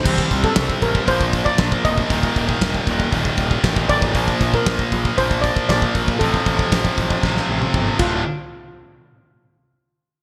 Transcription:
<<
  \new Staff \with { instrumentName = "Steel pan" } { \time 4/4 \key bes \major \tempo 4 = 117 c''8. a'8. bes'8 c''8. d''8. ees''8~ | ees''2.~ ees''8 d''8~ | d''8. bes'4~ bes'16 c''8 d''8 d''4 | a'2. r8 f'8 |
r1 | }
  \new Staff \with { instrumentName = "Distorted electric guitar" } { \clef bass \time 4/4 \key bes \major <c g c'>2 <bes, f bes>2 | <ees, bes, ees>1 | <bes, f bes>1 | <f, c f>2.~ <f, c f>8 <d, a, d>8 |
r1 | }
  \new Staff \with { instrumentName = "Distorted electric guitar" } { \clef bass \time 4/4 \key bes \major <c g c'>2 <bes, f bes>2 | <ees, bes, ees>2 <ees, bes, ees>2 | <bes, f bes>2 <bes, f bes>2 | <f, c f>2 <f, c f>4. <d, a, d>8 |
r1 | }
  \new Staff \with { instrumentName = "Picked electric bass" } { \clef bass \time 4/4 \key bes \major c,8 c,8 c,8 a,,8 bes,,4 bes,,8 d,,8 | ees,,8 ees,,8 ees,,8 ees,,8 ees,,8 ees,,8 a,,4 | bes,,8 bes,,8 bes,,8 bes,,8 bes,,4 bes,,8 bes,,8 | a,,8 a,,8 a,,8 a,,8 a,,8 a,,8 g,,8 d,,8 |
r1 | }
  \new DrumStaff \with { instrumentName = "Drums" } \drummode { \time 4/4 <cymc bd>16 bd16 <hho bd>16 bd16 <hho bd sn>16 bd16 <hho bd>16 bd16 <hho bd>16 bd16 <hho bd>16 bd16 <hho bd sn>16 bd16 <hho bd>16 bd16 | <hho bd>16 bd16 <hho bd>16 bd16 <hho bd sn>16 bd16 <hho bd>16 bd16 <hho bd>16 bd16 <hho bd>16 bd16 <hho bd sn>16 bd16 <hho bd>16 bd16 | <hho bd>16 bd16 <hho bd>16 bd16 <hho bd sn>16 bd16 <hho bd>16 bd16 <hho bd>16 bd16 <hho bd>16 bd16 <hho bd sn>16 bd16 <hho bd>16 bd16 | <hho bd>16 bd16 <hho bd>16 bd16 <hho bd sn>16 bd16 <hho bd>16 bd16 <bd sn>16 sn8 tommh16 <bd toml>8 <cymc bd>8 |
r4 r4 r4 r4 | }
>>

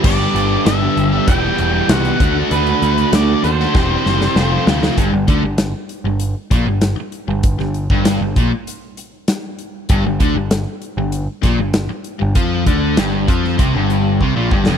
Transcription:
<<
  \new Staff \with { instrumentName = "Lead electric guitar" } { \time 4/4 \key g \major \tempo 4 = 97 d''4 e''4 g''4 fis''8. r16 | b'4 d''8 c''2 r8 | \key c \major r1 | r1 |
r1 | r1 | }
  \new Staff \with { instrumentName = "Overdriven electric guitar" } { \time 4/4 \key g \major <g, d g b d' g'>16 <g b d' g'>16 <g b d' g'>8 <g, d g b d' g'>16 <g b d' g'>8 <g b d' g'>16 <e, b, e g b g'>16 <e g b g'>8. <e, b, e g b g'>16 <e g b g'>16 <d a d' fis'>16 <a d' fis'>16 | <d a d' fis'>16 <a d' fis'>16 <d a d' fis'>8 <d a d' fis'>16 <a d' fis'>8 <a d' fis'>16 <e g c' g'>16 <g c' g'>8. <f, c f a c' f'>16 <f a c' f'>16 <f a c' f'>16 <f a c' f'>16 | \key c \major g,16 g,16 d16 g,8 r8 g,8 r16 bes,16 g,8 r8 g,16~ | g,16 g,8 g,8 g,16 bes,16 r2 r16 |
g,16 g,16 d16 g,8 r8 g,8 r16 bes,16 g,8 r8 g,16 | f8 d8 g,8 f8 c16 g,8. c16 bes,16 g,16 f,16 | }
  \new Staff \with { instrumentName = "Overdriven electric guitar" } { \clef bass \time 4/4 \key g \major <g, d g b d' g'>2 <e, b, e g b g'>4. <d a d' fis'>8~ | <d a d' fis'>4. <d a d' fis'>8 <e g c' g'>4 <f, c f a c' f'>4 | \key c \major g,16 g,16 d16 g,8 r8 g,8 r16 bes,16 g,8 r8 g,16~ | g,16 g,8 g,8 g,16 bes,16 r2 r16 |
g,16 g,16 d16 g,8 r8 g,8 r16 bes,16 g,8 r8 g,16 | f8 d8 g,8 f8 c16 g,8. c16 bes,16 g,16 f,16 | }
  \new Staff \with { instrumentName = "Picked electric bass" } { \clef bass \time 4/4 \key g \major g,,8 g,,8 g,,8 g,,8 e,,8 e,,8 c,8 d,8 | d,8 d,8 d,8 ees,8 e,,8 fis,,8 f,,8 d,8 | \key c \major g,,16 g,,16 d,16 g,,8 r8 g,,8 r16 bes,,16 g,,8 r8 g,,16~ | g,,16 g,,8 g,,8 g,,16 bes,,16 r2 r16 |
g,,16 g,,16 d,16 g,,8 r8 g,,8 r16 bes,,16 g,,8 r8 g,,16 | f,8 d,8 g,,8 f,8 c,16 g,,8. c,16 bes,,16 g,,16 f,,16 | }
  \new DrumStaff \with { instrumentName = "Drums" } \drummode { \time 4/4 <cymc bd>8 hh8 <hh sn>8 hh8 <hh bd>8 hh8 <hh sn>16 hh16 <hh bd>8 | hh16 hh16 hh16 hh16 <hh sn>8 hh16 sn16 <bd sn>8 sn16 sn16 sn8 sn16 sn16 | <hh bd>8 <hh bd>8 <hh sn>8 hh8 hh8 <hh bd>8 <hh sn>8 hh8 | <hh bd>16 sn16 hh16 bd16 <hh sn>8 <hh bd>8 hh8 hh8 <hh sn>8 hh8 |
<hh bd>8 <hh bd>8 <hh sn>8 hh8 hh8 <hh bd sn>8 <hh sn>8 hh8 | <hh bd>8 <hh bd>8 <hh sn>8 <hh bd>16 sn16 <hh bd>8 hh8 bd8 bd16 sn16 | }
>>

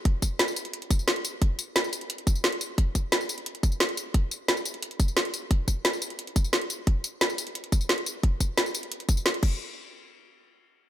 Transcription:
\new DrumStaff \with { instrumentName = "Drums" } \drummode { \time 4/4 \tempo 4 = 176 <hh bd>8 <hh bd tamb>8 <hh sn>16 tamb16 <hh tamb>16 hh16 hh16 hh16 <hh bd tamb>16 tamb16 <hh sn>16 hh16 <hh tamb>8 | <hh bd>8 <hh tamb>8 <hh sn>16 tamb16 <hh tamb>16 hh16 hh16 hh16 <hh bd tamb>16 tamb16 <hh sn>16 hh16 <hh tamb>8 | <hh bd>8 <hh bd tamb>8 <hh sn>16 tamb16 <hh tamb>16 hh16 hh16 hh16 <hh bd tamb>16 tamb16 <hh sn>16 hh16 <hh tamb>8 | <hh bd>8 <hh tamb>8 <hh sn>16 tamb16 <hh tamb>16 hh16 hh16 hh16 <hh bd tamb>16 tamb16 <hh sn>16 hh16 <hh tamb>8 |
<hh bd>8 <hh bd tamb>8 <hh sn>16 tamb16 <hh tamb>16 hh16 hh16 hh16 <hh bd tamb>16 tamb16 <hh sn>16 hh16 <hh tamb>8 | <hh bd>8 <hh tamb>8 <hh sn>16 tamb16 <hh tamb>16 hh16 hh16 hh16 <hh bd tamb>16 tamb16 <hh sn>16 hh16 <hh tamb>8 | <hh bd>8 <hh bd tamb>8 <hh sn>16 tamb16 <hh tamb>16 hh16 hh16 hh16 <hh bd tamb>16 tamb16 <hh sn>16 hh16 <cymc bd>8 | r4 r4 r4 r4 | }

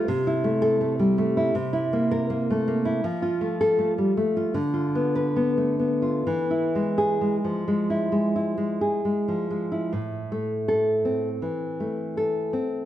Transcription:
\new Staff \with { instrumentName = "Nylon-string guitar" } { \time 4/4 \key a \minor \tempo 4 = 79 << { r8. a'8 r4. bes'8 r8. | r8. a'8 r4. b'8 r8. | r8. gis'8 r2 r8. | r4 a'8. r2 r16 | } \\ { c16 e'16 a8 a16 g16 a16 e'16 c16 e'16 bes8 bes16 a16 bes16 e'16 | f16 f'16 a8 a16 g16 a16 f'16 d16 f'16 b8 b16 a16 b16 f'16 | e16 e'16 gis8 gis16 f16 gis16 e'16 gis16 e'16 gis16 gis'16 gis16 f16 gis16 e'16 | a,8 a4 c'8 e8 a8 a'8 c'8 | } >> }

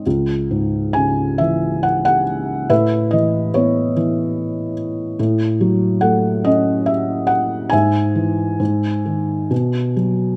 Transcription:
<<
  \new Staff \with { instrumentName = "Felt piano" } { \time 3/4 \key cis \minor \tempo 4 = 70 << { r4 gis''8 e''8 fis''16 fis''8. | e''8 dis''8 cis''4. r8 | r4 fis''8 dis''8 e''8 fis''8 | gis''2~ gis''8 r8 | } \\ { r2. | b'4 e'4. r8 | r2. | e''2~ e''8 r8 | } >> }
  \new Staff \with { instrumentName = "Felt piano" } { \clef bass \time 3/4 \key cis \minor cis,8 gis,8 cis8 e4. | a,8 e8 b8 e4. | a,8 fis8 a8 cis'4. | gis,8 e8 gis,8 dis8 b,8 fis8 | }
>>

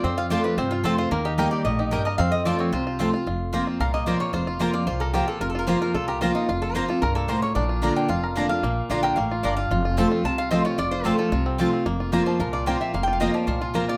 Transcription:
<<
  \new Staff \with { instrumentName = "Resonator guitar played with a steel bar" } { \time 4/4 \key f \mixolydian \tempo 4 = 223 c''8 f''8 d''8 b'8 c''8 f'8 a'8 c''8 | bes'8 g'8 r8 d''8 ees''8 g'8 bes'8 ees''8 | f''8 ees''8 d''8 des''8 c''4 r4 | r2 f''8 ees''8 d''8 des''8 |
c''8 f'8 bes'8 d''8 c''8 a'8 g'8 a'8 | \tuplet 3/2 { bes'8 a'8 bes'8 } c''8 bes'8 a'8 g'8 f'8 ees'8 | f'8 a'8 c''8 a'8 bes'8 a'8 c''8 des''8 | d''8 r4 g''8 f''4 d''8 f''8~ |
f''4 r8 g''8 f''4 d''8 f''8~ | f''4 r4 a''8 f''8 ees''8 des''8 | d''8 c''8 a'8 a'2~ a'16 r16 | r4. c''8 bes'8 d''8 g''8 e''8 |
\tuplet 3/2 { f''8 g''8 f''8 } ees''8 d''8 c''8 f'8 bes'8 d''8 | }
  \new Staff \with { instrumentName = "Mandolin" } { \time 4/4 \key f \mixolydian r4 <c' f' c'' a''>8 r4. <c' f' c'' a''>8 r8 | r4 <bes g' ees'' g''>8 r4. <bes g' ees'' g''>8 r8 | r4 <c' f' c'' a''>8 r4. <c' f' c'' a''>8 r8 | r4 <bes f' c'' bes''>8 r4. <bes f' c'' bes''>8 r8 |
r4 <bes f' c'' bes''>8 r4. <bes f' c'' bes''>8 r8 | r4 <bes f' c'' bes''>8 r4. <bes f' c'' bes''>8 r8 | r4 <bes f' c'' bes''>8 r4. <bes f' c'' bes''>8 r8 | r4 <bes f' d'' bes''>8 r4. <bes f' d'' bes''>8 r8 |
r4 <bes f' d'' bes''>8 r4. <bes f' d'' bes''>8 r8 | r4 <c' f' c'' a''>8 r4. <c' f' c'' a''>8 r8 | r4 <c' f' c'' a''>8 r4. <c' f' c'' a''>8 r8 | r4 <bes f' c'' bes''>8 r4. <bes f' c'' bes''>8 r8 |
r4 <bes f' c'' bes''>8 r4. <bes f' c'' bes''>8 r8 | }
  \new Staff \with { instrumentName = "Five-string banjo" } { \time 4/4 \key f \mixolydian <c' f'>8 f'8 f'8 f'8 c'8 f'8 c'8 f'8 | bes8 ees'8 bes'8 g'8 bes8 ees'8 bes8 bes'8 | c'4 f'8 c'8 f'8 f'8 f'8 f'8 | f'4 bes8 f'8 bes'8 bes8 f'8 bes8 |
f'8 f'8 bes8 f'8 f'8 bes'8 f'8 f'8 | f'8 f'8 bes8 f'8 f'8 bes'8 f'8 f'8 | f'8 f'8 bes8 f'8 bes'8 bes8 f'8 bes8 | d'8 f'8 bes8 d'8 f'8 bes'8 d'8 f'8 |
bes4 f'8 bes'8 bes8 f'8 d'8 f'8 | f'8 f'8 c'8 f'8 f'8 f'8 f'8 f'8 | f'8 f'8 c'8 f'8 f'8 c'8 f'8 c'8 | bes8 f'8 bes8 f8 f'8 f'8 bes8 f'8 |
bes8 f'8 bes8 f8 f'8 f'8 bes8 f'8 | }
  \new Staff \with { instrumentName = "Steel-string acoustic guitar" } { \time 4/4 \key f \mixolydian << { r4 <f a c' f'>4 r4 <f a c' f'>4 | r4 <g bes ees' g'>4 r2 | r4 <f a c' f'>4 r4 <f a c' f'>8 <c' f'>8 | r4 <f bes c' f'>4 r4 <f bes c' f'>4 |
r4 <f bes c' f'>4 r4 <f bes c' f'>4 | r4 <f bes c' f'>4 r4 <f bes c' f'>4 | r4 <f bes c' f'>8 <c' f'>8 r2 | r4 <d bes d' f'>4 r4 <d bes d' f'>8 <d' f'>8 |
r4 <d bes d' f'>4 r2 | r4 <f a c' f'>4 r4 <f a c' f'>4 | r4 <f a c' f'>4 r4 <f a c' f'>4 | r4 <f bes c' f'>4 r4 <f bes c' f'>4 |
r4 <f bes c' f'>4 r4 <f bes c' f'>4 | } \\ { f,2 c2 | ees2 a,4 g,4 | f,2 c2 | f,2 bes,2 |
f,2 bes,2 | f,2 bes,2 | f,2 g,4 a,4 | bes,2 f,2 |
bes,2 a,4 g,4 | f,2 c2 | f,2 c2 | f,2 bes,2 |
f,2 bes,2 | } >> }
  \new Staff \with { instrumentName = "Upright bass" } { \clef bass \time 4/4 \key f \mixolydian f,2 g,4 f,4 | ees,2 bes,,2 | f,2 c,2 | f,,2 c,2 |
f,,2 c,2 | f,,2 c,2 | f,,2 c,2 | bes,,2 f,,2 |
bes,,4 bes,,4 a,,4 g,,4 | f,,2 c,2 | f,,2 c,2 | f,,2 c,2 |
f,,2 c,2 | }
>>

